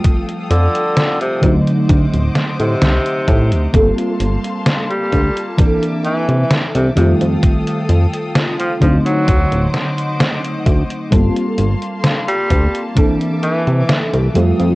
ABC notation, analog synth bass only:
X:1
M:4/4
L:1/16
Q:1/4=65
K:Gm
V:1 name="Analog synth bass" clef=bass
z2 F,, z3 D,, z D,, D,,, z A,, C,, z A,, D,, | G,,, z G,,, z3 D,, z4 C, z C,, F,, F,, | z2 F,, z3 D,, z D,, D,,, z4 D,, z | G,,, z G,,, z3 D,, z4 C, z C,, F,, F,, |]